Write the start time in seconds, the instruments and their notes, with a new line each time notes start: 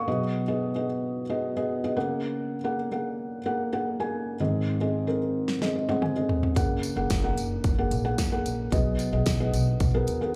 Already playing: felt piano F5 C#6
0.08 felt piano B2 F#3 B3 G#4 D#5
0.48 felt piano B3 G#4 D#5
0.75 felt piano B3 G#4 D#5
1.30 felt piano B3 G#4 D#5
1.57 felt piano B3 G#4 D#5
1.84 felt piano B3 G#4 D#5
1.97 felt piano C#3 A#3 G#4 F#5
2.64 felt piano A#3 G#4 F#5
2.92 felt piano A#3 G#4 F#5
3.46 felt piano A#3 G#4 F#5
3.72 felt piano A#3 G#4 F#5
4.00 felt piano A#3 G#4 G#5
4.40 felt piano G#2 D#3 C4 G#4 D#5
4.81 felt piano C4 G#4 D#5
5.07 felt piano C4 G#4 A#4
5.48 snare
5.62 felt piano C4 G#4 D#5, snare
5.76 felt piano D#5
5.89 felt piano C4 G#4 D#5 F#5, high tom
6.02 felt piano G#5, mid tom
6.16 felt piano C4 G#4 D#5
6.29 floor tom
6.43 floor tom
6.56 upright bass F#1, felt piano C#3 A#3 G#4 F#5, kick, closed hi-hat, tambourine
6.83 closed hi-hat, tambourine
6.96 upright bass F#1, felt piano A#3 G#4 F#5
7.10 upright bass F#1, kick, snare, closed hi-hat, tambourine
7.23 felt piano A#3 G#4 F#5
7.37 upright bass F#1, closed hi-hat, tambourine
7.64 upright bass F#1, kick, closed hi-hat, tambourine
7.78 felt piano A#3 G#4 F#5
7.91 upright bass A#1, closed hi-hat, tambourine
8.05 felt piano A#3 G#4 F#5
8.18 upright bass F#1, kick, snare, closed hi-hat, tambourine
8.32 felt piano A#3 G#4 F#5
8.45 upright bass A#1, closed hi-hat, tambourine
8.72 upright bass B1, felt piano B2 F#3 B3 G#4 D#5, kick, closed hi-hat, tambourine
8.99 closed hi-hat, tambourine
9.13 upright bass B1, felt piano B3 G#4 D#5
9.26 upright bass B1, kick, snare, closed hi-hat, tambourine
9.40 felt piano B3 G#4 D#5
9.54 upright bass B1, closed hi-hat, tambourine
9.80 upright bass B1, kick, closed hi-hat, tambourine
9.94 felt piano B3 G#4 A#4
10.07 upright bass D#2, closed hi-hat, tambourine
10.21 felt piano B3 G#4 A#4